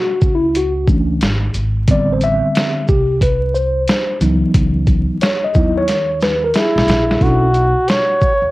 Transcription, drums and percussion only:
0.22 kick medium
0.22 shaker soft
0.55 closed hi-hat medium
0.88 kick medium
0.88 shaker soft
1.21 snare loud
1.21 closed hi-hat medium
1.54 closed hi-hat medium
1.54 shaker medium
1.88 kick loud
1.88 closed hi-hat loud
2.21 closed hi-hat soft
2.21 shaker soft
2.55 snare loud
2.55 closed hi-hat medium
2.88 kick medium
2.88 shaker soft
3.21 kick medium
3.21 closed hi-hat medium
3.55 shaker soft
3.87 snare loud
3.87 closed hi-hat medium
4.21 closed hi-hat medium
4.21 shaker medium
4.54 kick loud
4.54 closed hi-hat loud
4.87 kick medium
4.87 closed hi-hat soft
4.87 shaker soft
5.21 snare loud
5.21 closed hi-hat medium
5.54 kick loud
5.54 shaker soft
5.88 snare medium
5.88 closed hi-hat medium
6.21 snare medium
6.21 shaker soft
6.54 snare loud
6.54 closed hi-hat medium
6.78 snare medium
6.88 snare loud
6.88 closed hi-hat medium
6.88 shaker medium
7.11 snare loud
7.21 kick loud
7.21 closed hi-hat medium
7.54 closed hi-hat soft
7.54 shaker soft
7.88 snare loud
7.88 closed hi-hat medium
8.21 kick medium
8.21 shaker soft

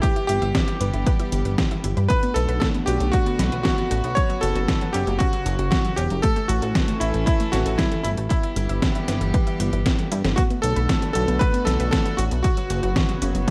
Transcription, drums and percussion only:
0.03 kick loud
0.03 closed hi-hat medium
0.16 closed hi-hat soft
0.29 closed hi-hat medium
0.42 closed hi-hat soft
0.55 kick loud
0.55 snare loud
0.55 closed hi-hat medium
0.68 closed hi-hat soft
0.81 closed hi-hat medium
0.94 closed hi-hat soft
1.06 kick loud
1.06 closed hi-hat medium
1.20 closed hi-hat soft
1.32 closed hi-hat medium
1.45 closed hi-hat soft
1.58 kick loud
1.58 snare loud
1.58 closed hi-hat medium
1.71 closed hi-hat soft
1.84 closed hi-hat medium
1.97 closed hi-hat soft
2.10 kick loud
2.10 closed hi-hat medium
2.23 closed hi-hat soft
2.36 closed hi-hat medium
2.49 closed hi-hat soft
2.62 kick loud
2.62 snare loud
2.62 closed hi-hat medium
2.75 closed hi-hat soft
2.87 closed hi-hat medium
3.00 closed hi-hat soft
3.13 kick loud
3.13 closed hi-hat medium
3.26 closed hi-hat soft
3.39 snare medium
3.39 closed hi-hat medium
3.52 closed hi-hat soft
3.65 kick loud
3.65 snare loud
3.65 closed hi-hat medium
3.78 closed hi-hat soft
3.91 closed hi-hat medium
4.04 closed hi-hat soft
4.17 kick loud
4.17 closed hi-hat medium
4.30 closed hi-hat soft
4.43 closed hi-hat medium
4.56 closed hi-hat soft
4.68 kick loud
4.68 snare loud
4.68 closed hi-hat medium
4.81 closed hi-hat soft
4.94 closed hi-hat medium
5.07 closed hi-hat soft
5.20 kick loud
5.20 closed hi-hat medium
5.33 closed hi-hat soft
5.46 closed hi-hat medium
5.59 closed hi-hat soft
5.72 kick loud
5.72 snare loud
5.72 closed hi-hat medium
5.85 closed hi-hat soft
5.97 closed hi-hat medium
6.10 closed hi-hat soft
6.23 kick loud
6.23 closed hi-hat medium
6.36 closed hi-hat soft
6.49 closed hi-hat medium
6.62 closed hi-hat soft
6.75 kick loud
6.75 snare loud
6.75 closed hi-hat medium
6.88 closed hi-hat soft
7.01 closed hi-hat medium
7.14 closed hi-hat soft
7.27 kick loud
7.27 closed hi-hat medium
7.40 closed hi-hat soft
7.53 snare medium
7.53 closed hi-hat medium
7.66 closed hi-hat soft
7.79 kick loud
7.79 snare loud
7.79 closed hi-hat medium
7.92 closed hi-hat soft
8.05 closed hi-hat medium
8.17 closed hi-hat soft
8.30 kick loud
8.30 closed hi-hat medium
8.43 closed hi-hat soft
8.56 closed hi-hat medium
8.69 closed hi-hat soft
8.82 kick loud
8.82 snare loud
8.82 closed hi-hat medium
8.95 closed hi-hat soft
9.08 snare medium
9.08 closed hi-hat loud
9.21 closed hi-hat soft
9.34 kick loud
9.34 closed hi-hat medium
9.47 closed hi-hat soft
9.60 closed hi-hat loud
9.73 closed hi-hat soft
9.86 kick loud
9.86 snare loud
9.86 closed hi-hat medium
9.99 closed hi-hat soft
10.12 closed hi-hat medium
10.24 snare medium
10.24 closed hi-hat soft
10.37 kick loud
10.37 closed hi-hat medium
10.50 closed hi-hat soft
10.63 closed hi-hat medium
10.76 closed hi-hat soft
10.89 kick loud
10.89 snare loud
10.89 closed hi-hat medium
11.02 closed hi-hat soft
11.15 closed hi-hat loud
11.28 closed hi-hat soft
11.41 kick loud
11.41 closed hi-hat medium
11.54 closed hi-hat soft
11.67 snare medium
11.67 closed hi-hat medium
11.80 closed hi-hat soft
11.93 kick loud
11.93 snare loud
11.93 closed hi-hat medium
12.06 closed hi-hat soft
12.18 closed hi-hat medium
12.31 closed hi-hat soft
12.44 kick loud
12.44 closed hi-hat medium
12.57 closed hi-hat soft
12.70 closed hi-hat medium
12.83 closed hi-hat soft
12.96 kick loud
12.96 snare loud
12.96 closed hi-hat medium
13.09 closed hi-hat soft
13.22 closed hi-hat medium
13.35 closed hi-hat soft

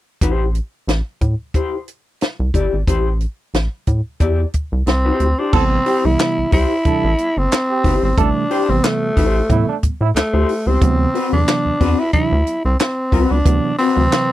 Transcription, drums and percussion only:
0.21 kick loud
0.21 closed hi-hat loud
0.55 closed hi-hat medium
0.88 snare medium
0.88 closed hi-hat medium
1.21 kick medium
1.21 closed hi-hat medium
1.54 kick medium
1.54 closed hi-hat medium
1.88 closed hi-hat medium
2.21 snare medium
2.21 closed hi-hat medium
2.54 kick medium
2.54 closed hi-hat medium
2.88 kick loud
2.88 closed hi-hat loud
3.21 closed hi-hat medium
3.54 snare loud
3.54 closed hi-hat medium
3.87 kick medium
3.87 closed hi-hat medium
4.20 kick medium
4.20 closed hi-hat medium
4.53 kick medium
4.53 closed hi-hat medium
4.87 snare loud
4.87 closed hi-hat medium
5.20 closed hi-hat medium
5.53 kick loud
5.53 crash loud
5.86 open hi-hat medium
6.19 snare loud
6.19 clap medium
6.19 closed hi-hat medium
6.52 kick medium
6.52 open hi-hat medium
6.85 kick medium
6.85 closed hi-hat medium
7.18 closed hi-hat medium
7.51 snare loud
7.51 clap medium
7.51 closed hi-hat medium
7.84 kick medium
7.84 open hi-hat medium
8.18 kick loud
8.18 closed hi-hat loud
8.51 open hi-hat medium
8.84 snare loud
8.84 clap medium
8.84 closed hi-hat medium
9.17 kick medium
9.17 open hi-hat medium
9.50 kick medium
9.50 closed hi-hat medium
9.83 kick medium
9.83 closed hi-hat medium
10.16 snare loud
10.16 clap medium
10.16 closed hi-hat medium
10.49 open hi-hat medium
10.82 kick loud
10.82 closed hi-hat loud
11.15 open hi-hat medium
11.48 snare loud
11.48 clap medium
11.48 closed hi-hat loud
11.81 kick medium
11.81 open hi-hat medium
12.13 kick loud
12.13 closed hi-hat medium
12.47 closed hi-hat medium
12.79 snare loud
12.79 clap medium
12.79 closed hi-hat medium
13.12 kick medium
13.12 open hi-hat medium
13.46 kick loud
13.46 closed hi-hat loud
13.78 open hi-hat medium
14.12 snare loud
14.12 clap medium
14.12 closed hi-hat medium

